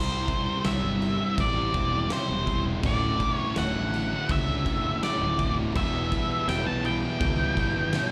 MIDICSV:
0, 0, Header, 1, 8, 480
1, 0, Start_track
1, 0, Key_signature, 2, "major"
1, 0, Tempo, 727273
1, 1878, Time_signature, 4, 2, 24, 8
1, 5356, End_track
2, 0, Start_track
2, 0, Title_t, "Lead electric guitar"
2, 0, Program_c, 0, 29
2, 0, Note_on_c, 0, 72, 88
2, 431, Note_off_c, 0, 72, 0
2, 433, Note_on_c, 0, 76, 99
2, 889, Note_off_c, 0, 76, 0
2, 927, Note_on_c, 0, 74, 97
2, 1376, Note_off_c, 0, 74, 0
2, 1403, Note_on_c, 0, 72, 93
2, 1736, Note_off_c, 0, 72, 0
2, 1889, Note_on_c, 0, 74, 106
2, 2200, Note_off_c, 0, 74, 0
2, 2200, Note_on_c, 0, 73, 106
2, 2337, Note_off_c, 0, 73, 0
2, 2362, Note_on_c, 0, 78, 105
2, 2847, Note_on_c, 0, 76, 99
2, 2854, Note_off_c, 0, 78, 0
2, 3295, Note_off_c, 0, 76, 0
2, 3320, Note_on_c, 0, 74, 107
2, 3653, Note_off_c, 0, 74, 0
2, 3805, Note_on_c, 0, 76, 108
2, 4279, Note_on_c, 0, 79, 106
2, 4294, Note_off_c, 0, 76, 0
2, 4398, Note_off_c, 0, 79, 0
2, 4400, Note_on_c, 0, 81, 102
2, 4509, Note_off_c, 0, 81, 0
2, 4527, Note_on_c, 0, 79, 105
2, 5356, Note_off_c, 0, 79, 0
2, 5356, End_track
3, 0, Start_track
3, 0, Title_t, "Distorted electric guitar"
3, 0, Program_c, 1, 30
3, 303, Note_on_c, 1, 72, 81
3, 305, Note_on_c, 1, 67, 73
3, 309, Note_on_c, 1, 60, 68
3, 312, Note_on_c, 1, 64, 65
3, 411, Note_off_c, 1, 60, 0
3, 417, Note_off_c, 1, 64, 0
3, 419, Note_off_c, 1, 67, 0
3, 419, Note_off_c, 1, 72, 0
3, 664, Note_on_c, 1, 60, 89
3, 665, Note_on_c, 1, 64, 79
3, 674, Note_on_c, 1, 67, 86
3, 675, Note_on_c, 1, 72, 84
3, 782, Note_off_c, 1, 72, 0
3, 786, Note_off_c, 1, 67, 0
3, 788, Note_off_c, 1, 60, 0
3, 788, Note_off_c, 1, 64, 0
3, 1027, Note_on_c, 1, 72, 70
3, 1035, Note_on_c, 1, 67, 73
3, 1037, Note_on_c, 1, 64, 65
3, 1039, Note_on_c, 1, 60, 59
3, 1139, Note_off_c, 1, 60, 0
3, 1142, Note_off_c, 1, 64, 0
3, 1146, Note_off_c, 1, 67, 0
3, 1148, Note_off_c, 1, 72, 0
3, 2231, Note_on_c, 1, 66, 77
3, 2235, Note_on_c, 1, 61, 76
3, 2240, Note_on_c, 1, 57, 66
3, 2241, Note_on_c, 1, 50, 64
3, 2352, Note_off_c, 1, 50, 0
3, 2353, Note_off_c, 1, 57, 0
3, 2358, Note_off_c, 1, 61, 0
3, 2360, Note_off_c, 1, 66, 0
3, 2593, Note_on_c, 1, 50, 80
3, 2598, Note_on_c, 1, 57, 85
3, 2604, Note_on_c, 1, 61, 90
3, 2606, Note_on_c, 1, 66, 84
3, 2721, Note_off_c, 1, 66, 0
3, 2723, Note_off_c, 1, 57, 0
3, 2724, Note_off_c, 1, 50, 0
3, 2725, Note_off_c, 1, 61, 0
3, 2971, Note_on_c, 1, 66, 70
3, 2972, Note_on_c, 1, 57, 68
3, 2974, Note_on_c, 1, 61, 71
3, 2980, Note_on_c, 1, 50, 62
3, 3078, Note_off_c, 1, 50, 0
3, 3081, Note_off_c, 1, 57, 0
3, 3086, Note_off_c, 1, 61, 0
3, 3091, Note_off_c, 1, 66, 0
3, 4169, Note_on_c, 1, 64, 81
3, 4171, Note_on_c, 1, 59, 68
3, 4176, Note_on_c, 1, 55, 65
3, 4181, Note_on_c, 1, 52, 59
3, 4286, Note_off_c, 1, 52, 0
3, 4291, Note_off_c, 1, 55, 0
3, 4295, Note_off_c, 1, 64, 0
3, 4296, Note_off_c, 1, 59, 0
3, 4528, Note_on_c, 1, 52, 77
3, 4535, Note_on_c, 1, 55, 92
3, 4536, Note_on_c, 1, 59, 84
3, 4540, Note_on_c, 1, 64, 94
3, 4642, Note_off_c, 1, 64, 0
3, 4646, Note_off_c, 1, 55, 0
3, 4648, Note_off_c, 1, 59, 0
3, 4649, Note_off_c, 1, 52, 0
3, 4887, Note_on_c, 1, 64, 82
3, 4895, Note_on_c, 1, 59, 71
3, 4897, Note_on_c, 1, 55, 63
3, 4902, Note_on_c, 1, 52, 58
3, 4992, Note_off_c, 1, 52, 0
3, 4996, Note_off_c, 1, 55, 0
3, 4997, Note_off_c, 1, 59, 0
3, 5004, Note_off_c, 1, 64, 0
3, 5356, End_track
4, 0, Start_track
4, 0, Title_t, "Distorted electric guitar"
4, 0, Program_c, 2, 30
4, 0, Note_on_c, 2, 48, 90
4, 0, Note_on_c, 2, 55, 91
4, 0, Note_on_c, 2, 60, 93
4, 0, Note_on_c, 2, 64, 105
4, 0, Note_on_c, 2, 67, 107
4, 0, Note_on_c, 2, 72, 106
4, 167, Note_off_c, 2, 60, 0
4, 175, Note_off_c, 2, 64, 0
4, 175, Note_on_c, 2, 60, 81
4, 179, Note_off_c, 2, 67, 0
4, 182, Note_off_c, 2, 72, 0
4, 182, Note_on_c, 2, 64, 81
4, 187, Note_on_c, 2, 67, 82
4, 190, Note_on_c, 2, 72, 86
4, 410, Note_off_c, 2, 48, 0
4, 415, Note_off_c, 2, 55, 0
4, 417, Note_off_c, 2, 60, 0
4, 418, Note_on_c, 2, 48, 99
4, 421, Note_off_c, 2, 64, 0
4, 423, Note_on_c, 2, 55, 101
4, 424, Note_off_c, 2, 67, 0
4, 425, Note_off_c, 2, 72, 0
4, 425, Note_on_c, 2, 60, 112
4, 429, Note_on_c, 2, 64, 109
4, 432, Note_on_c, 2, 67, 102
4, 433, Note_on_c, 2, 72, 114
4, 530, Note_off_c, 2, 72, 0
4, 538, Note_off_c, 2, 67, 0
4, 538, Note_on_c, 2, 72, 80
4, 539, Note_off_c, 2, 64, 0
4, 545, Note_off_c, 2, 60, 0
4, 546, Note_on_c, 2, 67, 73
4, 547, Note_on_c, 2, 64, 68
4, 553, Note_on_c, 2, 60, 59
4, 653, Note_off_c, 2, 64, 0
4, 655, Note_off_c, 2, 60, 0
4, 656, Note_off_c, 2, 67, 0
4, 658, Note_off_c, 2, 72, 0
4, 779, Note_on_c, 2, 72, 77
4, 784, Note_on_c, 2, 67, 72
4, 788, Note_off_c, 2, 48, 0
4, 789, Note_on_c, 2, 64, 69
4, 790, Note_off_c, 2, 55, 0
4, 791, Note_on_c, 2, 60, 62
4, 1133, Note_off_c, 2, 60, 0
4, 1138, Note_off_c, 2, 64, 0
4, 1141, Note_on_c, 2, 60, 86
4, 1145, Note_off_c, 2, 67, 0
4, 1146, Note_on_c, 2, 64, 84
4, 1147, Note_off_c, 2, 72, 0
4, 1153, Note_on_c, 2, 67, 82
4, 1155, Note_on_c, 2, 72, 92
4, 1256, Note_off_c, 2, 72, 0
4, 1261, Note_off_c, 2, 67, 0
4, 1264, Note_on_c, 2, 72, 69
4, 1265, Note_off_c, 2, 64, 0
4, 1269, Note_on_c, 2, 67, 73
4, 1270, Note_off_c, 2, 60, 0
4, 1273, Note_on_c, 2, 64, 70
4, 1278, Note_on_c, 2, 60, 64
4, 1384, Note_off_c, 2, 60, 0
4, 1387, Note_off_c, 2, 64, 0
4, 1388, Note_on_c, 2, 48, 96
4, 1389, Note_off_c, 2, 72, 0
4, 1390, Note_off_c, 2, 67, 0
4, 1390, Note_on_c, 2, 55, 105
4, 1392, Note_on_c, 2, 60, 105
4, 1395, Note_on_c, 2, 64, 106
4, 1397, Note_on_c, 2, 67, 100
4, 1397, Note_on_c, 2, 72, 105
4, 1496, Note_off_c, 2, 72, 0
4, 1501, Note_off_c, 2, 67, 0
4, 1504, Note_on_c, 2, 72, 80
4, 1507, Note_off_c, 2, 64, 0
4, 1509, Note_off_c, 2, 60, 0
4, 1509, Note_on_c, 2, 67, 71
4, 1515, Note_on_c, 2, 64, 68
4, 1517, Note_on_c, 2, 60, 59
4, 1615, Note_off_c, 2, 60, 0
4, 1622, Note_off_c, 2, 64, 0
4, 1623, Note_on_c, 2, 60, 83
4, 1625, Note_off_c, 2, 67, 0
4, 1630, Note_on_c, 2, 64, 72
4, 1631, Note_off_c, 2, 72, 0
4, 1633, Note_on_c, 2, 67, 78
4, 1638, Note_on_c, 2, 72, 88
4, 1738, Note_off_c, 2, 72, 0
4, 1744, Note_off_c, 2, 67, 0
4, 1746, Note_on_c, 2, 72, 76
4, 1747, Note_off_c, 2, 64, 0
4, 1750, Note_off_c, 2, 60, 0
4, 1752, Note_on_c, 2, 67, 80
4, 1753, Note_off_c, 2, 48, 0
4, 1754, Note_off_c, 2, 55, 0
4, 1755, Note_on_c, 2, 64, 67
4, 1758, Note_on_c, 2, 60, 59
4, 1854, Note_on_c, 2, 38, 99
4, 1857, Note_off_c, 2, 72, 0
4, 1858, Note_off_c, 2, 60, 0
4, 1859, Note_on_c, 2, 45, 99
4, 1860, Note_off_c, 2, 67, 0
4, 1861, Note_on_c, 2, 50, 98
4, 1862, Note_off_c, 2, 64, 0
4, 1864, Note_on_c, 2, 57, 98
4, 1868, Note_on_c, 2, 61, 101
4, 1870, Note_on_c, 2, 66, 108
4, 2094, Note_off_c, 2, 50, 0
4, 2096, Note_off_c, 2, 57, 0
4, 2100, Note_off_c, 2, 61, 0
4, 2102, Note_on_c, 2, 50, 77
4, 2104, Note_on_c, 2, 57, 84
4, 2105, Note_off_c, 2, 66, 0
4, 2108, Note_on_c, 2, 61, 84
4, 2113, Note_on_c, 2, 66, 91
4, 2337, Note_off_c, 2, 38, 0
4, 2337, Note_off_c, 2, 45, 0
4, 2341, Note_off_c, 2, 50, 0
4, 2345, Note_off_c, 2, 57, 0
4, 2345, Note_on_c, 2, 38, 101
4, 2345, Note_on_c, 2, 45, 99
4, 2348, Note_off_c, 2, 61, 0
4, 2349, Note_off_c, 2, 66, 0
4, 2349, Note_on_c, 2, 50, 110
4, 2353, Note_on_c, 2, 57, 103
4, 2356, Note_on_c, 2, 61, 100
4, 2357, Note_on_c, 2, 66, 108
4, 2460, Note_off_c, 2, 61, 0
4, 2460, Note_off_c, 2, 66, 0
4, 2467, Note_off_c, 2, 57, 0
4, 2468, Note_on_c, 2, 61, 77
4, 2468, Note_on_c, 2, 66, 67
4, 2471, Note_off_c, 2, 50, 0
4, 2475, Note_on_c, 2, 57, 69
4, 2479, Note_on_c, 2, 50, 62
4, 2579, Note_off_c, 2, 50, 0
4, 2581, Note_off_c, 2, 57, 0
4, 2583, Note_off_c, 2, 66, 0
4, 2585, Note_off_c, 2, 61, 0
4, 2700, Note_on_c, 2, 66, 76
4, 2706, Note_on_c, 2, 61, 68
4, 2711, Note_off_c, 2, 38, 0
4, 2711, Note_off_c, 2, 45, 0
4, 2713, Note_on_c, 2, 50, 58
4, 2713, Note_on_c, 2, 57, 66
4, 3056, Note_off_c, 2, 50, 0
4, 3058, Note_off_c, 2, 57, 0
4, 3063, Note_on_c, 2, 50, 76
4, 3065, Note_off_c, 2, 61, 0
4, 3066, Note_on_c, 2, 57, 80
4, 3068, Note_off_c, 2, 66, 0
4, 3073, Note_on_c, 2, 61, 83
4, 3076, Note_on_c, 2, 66, 94
4, 3172, Note_off_c, 2, 66, 0
4, 3177, Note_off_c, 2, 61, 0
4, 3180, Note_on_c, 2, 66, 79
4, 3184, Note_off_c, 2, 57, 0
4, 3185, Note_off_c, 2, 50, 0
4, 3185, Note_on_c, 2, 61, 67
4, 3192, Note_on_c, 2, 57, 68
4, 3193, Note_on_c, 2, 50, 68
4, 3302, Note_off_c, 2, 50, 0
4, 3304, Note_on_c, 2, 38, 95
4, 3305, Note_off_c, 2, 57, 0
4, 3307, Note_off_c, 2, 61, 0
4, 3307, Note_on_c, 2, 45, 105
4, 3308, Note_off_c, 2, 66, 0
4, 3310, Note_on_c, 2, 50, 104
4, 3313, Note_on_c, 2, 57, 110
4, 3315, Note_on_c, 2, 61, 117
4, 3316, Note_on_c, 2, 66, 98
4, 3423, Note_off_c, 2, 66, 0
4, 3426, Note_off_c, 2, 61, 0
4, 3431, Note_on_c, 2, 66, 74
4, 3433, Note_off_c, 2, 57, 0
4, 3434, Note_on_c, 2, 61, 67
4, 3437, Note_off_c, 2, 50, 0
4, 3441, Note_on_c, 2, 57, 69
4, 3445, Note_on_c, 2, 50, 57
4, 3540, Note_off_c, 2, 50, 0
4, 3547, Note_off_c, 2, 57, 0
4, 3547, Note_on_c, 2, 50, 76
4, 3552, Note_off_c, 2, 61, 0
4, 3555, Note_on_c, 2, 57, 85
4, 3556, Note_off_c, 2, 66, 0
4, 3560, Note_on_c, 2, 61, 84
4, 3564, Note_on_c, 2, 66, 79
4, 3660, Note_off_c, 2, 66, 0
4, 3666, Note_off_c, 2, 61, 0
4, 3668, Note_on_c, 2, 66, 78
4, 3670, Note_off_c, 2, 38, 0
4, 3672, Note_off_c, 2, 45, 0
4, 3672, Note_off_c, 2, 50, 0
4, 3672, Note_off_c, 2, 57, 0
4, 3674, Note_on_c, 2, 61, 74
4, 3679, Note_on_c, 2, 50, 65
4, 3680, Note_on_c, 2, 57, 72
4, 3778, Note_off_c, 2, 66, 0
4, 3781, Note_off_c, 2, 61, 0
4, 3783, Note_off_c, 2, 50, 0
4, 3783, Note_off_c, 2, 57, 0
4, 3790, Note_on_c, 2, 40, 102
4, 3792, Note_on_c, 2, 47, 97
4, 3794, Note_on_c, 2, 52, 109
4, 3799, Note_on_c, 2, 55, 102
4, 3799, Note_on_c, 2, 59, 111
4, 3801, Note_on_c, 2, 64, 104
4, 4022, Note_off_c, 2, 52, 0
4, 4030, Note_off_c, 2, 55, 0
4, 4030, Note_on_c, 2, 52, 84
4, 4033, Note_off_c, 2, 59, 0
4, 4036, Note_off_c, 2, 64, 0
4, 4038, Note_on_c, 2, 55, 75
4, 4041, Note_on_c, 2, 59, 80
4, 4044, Note_on_c, 2, 64, 85
4, 4268, Note_off_c, 2, 40, 0
4, 4269, Note_off_c, 2, 47, 0
4, 4272, Note_off_c, 2, 52, 0
4, 4274, Note_off_c, 2, 55, 0
4, 4275, Note_off_c, 2, 59, 0
4, 4276, Note_on_c, 2, 40, 102
4, 4277, Note_on_c, 2, 47, 102
4, 4280, Note_off_c, 2, 64, 0
4, 4280, Note_on_c, 2, 52, 100
4, 4281, Note_on_c, 2, 55, 106
4, 4283, Note_on_c, 2, 59, 111
4, 4288, Note_on_c, 2, 64, 104
4, 4381, Note_off_c, 2, 64, 0
4, 4387, Note_off_c, 2, 59, 0
4, 4389, Note_on_c, 2, 64, 84
4, 4395, Note_off_c, 2, 55, 0
4, 4395, Note_on_c, 2, 59, 72
4, 4396, Note_off_c, 2, 52, 0
4, 4403, Note_on_c, 2, 52, 67
4, 4403, Note_on_c, 2, 55, 65
4, 4510, Note_off_c, 2, 52, 0
4, 4513, Note_off_c, 2, 55, 0
4, 4513, Note_off_c, 2, 59, 0
4, 4517, Note_off_c, 2, 64, 0
4, 4635, Note_off_c, 2, 40, 0
4, 4636, Note_off_c, 2, 47, 0
4, 4641, Note_on_c, 2, 64, 80
4, 4642, Note_on_c, 2, 59, 76
4, 4646, Note_on_c, 2, 55, 67
4, 4650, Note_on_c, 2, 52, 68
4, 4989, Note_off_c, 2, 52, 0
4, 4995, Note_off_c, 2, 55, 0
4, 4996, Note_on_c, 2, 52, 84
4, 4999, Note_off_c, 2, 59, 0
4, 5003, Note_on_c, 2, 55, 78
4, 5004, Note_off_c, 2, 64, 0
4, 5006, Note_on_c, 2, 59, 85
4, 5012, Note_on_c, 2, 64, 86
4, 5111, Note_off_c, 2, 64, 0
4, 5119, Note_off_c, 2, 59, 0
4, 5119, Note_on_c, 2, 64, 74
4, 5120, Note_off_c, 2, 55, 0
4, 5125, Note_off_c, 2, 52, 0
4, 5126, Note_on_c, 2, 59, 73
4, 5128, Note_on_c, 2, 55, 75
4, 5133, Note_on_c, 2, 52, 61
4, 5234, Note_off_c, 2, 52, 0
4, 5237, Note_on_c, 2, 40, 97
4, 5238, Note_off_c, 2, 55, 0
4, 5240, Note_off_c, 2, 59, 0
4, 5240, Note_on_c, 2, 47, 101
4, 5242, Note_off_c, 2, 64, 0
4, 5242, Note_on_c, 2, 52, 101
4, 5246, Note_on_c, 2, 55, 100
4, 5248, Note_on_c, 2, 59, 112
4, 5249, Note_on_c, 2, 64, 106
4, 5347, Note_off_c, 2, 64, 0
4, 5354, Note_off_c, 2, 59, 0
4, 5356, Note_off_c, 2, 40, 0
4, 5356, Note_off_c, 2, 47, 0
4, 5356, Note_off_c, 2, 52, 0
4, 5356, Note_off_c, 2, 55, 0
4, 5356, End_track
5, 0, Start_track
5, 0, Title_t, "Distorted electric guitar"
5, 0, Program_c, 3, 30
5, 0, Note_on_c, 3, 48, 98
5, 0, Note_on_c, 3, 55, 96
5, 0, Note_on_c, 3, 60, 106
5, 894, Note_off_c, 3, 48, 0
5, 901, Note_off_c, 3, 55, 0
5, 905, Note_off_c, 3, 60, 0
5, 907, Note_on_c, 3, 48, 81
5, 918, Note_on_c, 3, 55, 94
5, 929, Note_on_c, 3, 60, 91
5, 1858, Note_off_c, 3, 48, 0
5, 1864, Note_off_c, 3, 55, 0
5, 1869, Note_on_c, 3, 38, 89
5, 1870, Note_off_c, 3, 60, 0
5, 1883, Note_on_c, 3, 45, 101
5, 1892, Note_on_c, 3, 50, 94
5, 2818, Note_off_c, 3, 38, 0
5, 2825, Note_off_c, 3, 45, 0
5, 2829, Note_on_c, 3, 38, 81
5, 2830, Note_off_c, 3, 50, 0
5, 2844, Note_on_c, 3, 45, 96
5, 2854, Note_on_c, 3, 50, 91
5, 3778, Note_off_c, 3, 38, 0
5, 3785, Note_off_c, 3, 45, 0
5, 3790, Note_off_c, 3, 50, 0
5, 3790, Note_on_c, 3, 40, 103
5, 3803, Note_on_c, 3, 47, 101
5, 3816, Note_on_c, 3, 52, 103
5, 4738, Note_off_c, 3, 40, 0
5, 4744, Note_off_c, 3, 47, 0
5, 4746, Note_on_c, 3, 40, 84
5, 4751, Note_off_c, 3, 52, 0
5, 4760, Note_on_c, 3, 47, 93
5, 4772, Note_on_c, 3, 52, 91
5, 5356, Note_off_c, 3, 40, 0
5, 5356, Note_off_c, 3, 47, 0
5, 5356, Note_off_c, 3, 52, 0
5, 5356, End_track
6, 0, Start_track
6, 0, Title_t, "Fingered electric bass"
6, 0, Program_c, 4, 33
6, 0, Note_on_c, 4, 36, 97
6, 173, Note_off_c, 4, 36, 0
6, 433, Note_on_c, 4, 36, 84
6, 543, Note_off_c, 4, 36, 0
6, 547, Note_on_c, 4, 31, 92
6, 776, Note_off_c, 4, 31, 0
6, 911, Note_on_c, 4, 33, 96
6, 1139, Note_off_c, 4, 33, 0
6, 1150, Note_on_c, 4, 28, 99
6, 1378, Note_off_c, 4, 28, 0
6, 1514, Note_on_c, 4, 28, 86
6, 1853, Note_off_c, 4, 28, 0
6, 1871, Note_on_c, 4, 26, 100
6, 2099, Note_off_c, 4, 26, 0
6, 2355, Note_on_c, 4, 26, 91
6, 2466, Note_off_c, 4, 26, 0
6, 2470, Note_on_c, 4, 33, 91
6, 2698, Note_off_c, 4, 33, 0
6, 2835, Note_on_c, 4, 37, 100
6, 3060, Note_off_c, 4, 37, 0
6, 3074, Note_on_c, 4, 30, 105
6, 3300, Note_off_c, 4, 30, 0
6, 3434, Note_on_c, 4, 26, 96
6, 3772, Note_off_c, 4, 26, 0
6, 3799, Note_on_c, 4, 28, 95
6, 4022, Note_off_c, 4, 28, 0
6, 4272, Note_on_c, 4, 28, 88
6, 4386, Note_off_c, 4, 28, 0
6, 4393, Note_on_c, 4, 35, 95
6, 4619, Note_off_c, 4, 35, 0
6, 4758, Note_on_c, 4, 37, 100
6, 4981, Note_off_c, 4, 37, 0
6, 4994, Note_on_c, 4, 31, 101
6, 5219, Note_off_c, 4, 31, 0
6, 5356, End_track
7, 0, Start_track
7, 0, Title_t, "Muted distorted electric guitar strokes"
7, 661, Note_on_c, 9, 29, 52
7, 727, Note_off_c, 9, 29, 0
7, 790, Note_on_c, 9, 29, 54
7, 856, Note_off_c, 9, 29, 0
7, 1265, Note_on_c, 9, 29, 48
7, 1331, Note_off_c, 9, 29, 0
7, 2587, Note_on_c, 9, 29, 49
7, 2653, Note_off_c, 9, 29, 0
7, 2729, Note_on_c, 9, 29, 51
7, 2795, Note_off_c, 9, 29, 0
7, 3205, Note_on_c, 9, 29, 50
7, 3271, Note_off_c, 9, 29, 0
7, 4518, Note_on_c, 9, 29, 53
7, 4584, Note_off_c, 9, 29, 0
7, 4650, Note_on_c, 9, 29, 53
7, 4716, Note_off_c, 9, 29, 0
7, 5124, Note_on_c, 9, 29, 54
7, 5190, Note_off_c, 9, 29, 0
7, 5356, End_track
8, 0, Start_track
8, 0, Title_t, "Drums"
8, 184, Note_on_c, 9, 49, 59
8, 186, Note_on_c, 9, 36, 85
8, 250, Note_off_c, 9, 49, 0
8, 252, Note_off_c, 9, 36, 0
8, 425, Note_on_c, 9, 49, 86
8, 427, Note_on_c, 9, 38, 120
8, 491, Note_off_c, 9, 49, 0
8, 493, Note_off_c, 9, 38, 0
8, 672, Note_on_c, 9, 49, 60
8, 738, Note_off_c, 9, 49, 0
8, 911, Note_on_c, 9, 36, 119
8, 912, Note_on_c, 9, 49, 90
8, 977, Note_off_c, 9, 36, 0
8, 978, Note_off_c, 9, 49, 0
8, 1147, Note_on_c, 9, 49, 62
8, 1150, Note_on_c, 9, 36, 83
8, 1213, Note_off_c, 9, 49, 0
8, 1216, Note_off_c, 9, 36, 0
8, 1387, Note_on_c, 9, 49, 90
8, 1389, Note_on_c, 9, 38, 119
8, 1453, Note_off_c, 9, 49, 0
8, 1455, Note_off_c, 9, 38, 0
8, 1629, Note_on_c, 9, 49, 64
8, 1631, Note_on_c, 9, 36, 93
8, 1631, Note_on_c, 9, 38, 35
8, 1695, Note_off_c, 9, 49, 0
8, 1697, Note_off_c, 9, 36, 0
8, 1697, Note_off_c, 9, 38, 0
8, 1870, Note_on_c, 9, 49, 97
8, 1871, Note_on_c, 9, 36, 118
8, 1936, Note_off_c, 9, 49, 0
8, 1937, Note_off_c, 9, 36, 0
8, 2112, Note_on_c, 9, 49, 64
8, 2113, Note_on_c, 9, 36, 87
8, 2178, Note_off_c, 9, 49, 0
8, 2179, Note_off_c, 9, 36, 0
8, 2349, Note_on_c, 9, 49, 89
8, 2351, Note_on_c, 9, 38, 120
8, 2415, Note_off_c, 9, 49, 0
8, 2417, Note_off_c, 9, 38, 0
8, 2598, Note_on_c, 9, 49, 62
8, 2664, Note_off_c, 9, 49, 0
8, 2832, Note_on_c, 9, 49, 82
8, 2834, Note_on_c, 9, 36, 116
8, 2898, Note_off_c, 9, 49, 0
8, 2900, Note_off_c, 9, 36, 0
8, 3073, Note_on_c, 9, 49, 61
8, 3075, Note_on_c, 9, 36, 80
8, 3139, Note_off_c, 9, 49, 0
8, 3141, Note_off_c, 9, 36, 0
8, 3319, Note_on_c, 9, 49, 84
8, 3321, Note_on_c, 9, 38, 119
8, 3385, Note_off_c, 9, 49, 0
8, 3387, Note_off_c, 9, 38, 0
8, 3557, Note_on_c, 9, 49, 64
8, 3558, Note_on_c, 9, 36, 95
8, 3623, Note_off_c, 9, 49, 0
8, 3624, Note_off_c, 9, 36, 0
8, 3799, Note_on_c, 9, 36, 117
8, 3804, Note_on_c, 9, 49, 87
8, 3865, Note_off_c, 9, 36, 0
8, 3870, Note_off_c, 9, 49, 0
8, 4039, Note_on_c, 9, 36, 92
8, 4044, Note_on_c, 9, 49, 63
8, 4105, Note_off_c, 9, 36, 0
8, 4110, Note_off_c, 9, 49, 0
8, 4280, Note_on_c, 9, 49, 83
8, 4282, Note_on_c, 9, 38, 118
8, 4346, Note_off_c, 9, 49, 0
8, 4348, Note_off_c, 9, 38, 0
8, 4518, Note_on_c, 9, 49, 61
8, 4584, Note_off_c, 9, 49, 0
8, 4757, Note_on_c, 9, 36, 122
8, 4759, Note_on_c, 9, 49, 83
8, 4823, Note_off_c, 9, 36, 0
8, 4825, Note_off_c, 9, 49, 0
8, 4996, Note_on_c, 9, 36, 76
8, 4996, Note_on_c, 9, 49, 63
8, 5062, Note_off_c, 9, 36, 0
8, 5062, Note_off_c, 9, 49, 0
8, 5231, Note_on_c, 9, 49, 92
8, 5233, Note_on_c, 9, 38, 121
8, 5297, Note_off_c, 9, 49, 0
8, 5299, Note_off_c, 9, 38, 0
8, 5356, End_track
0, 0, End_of_file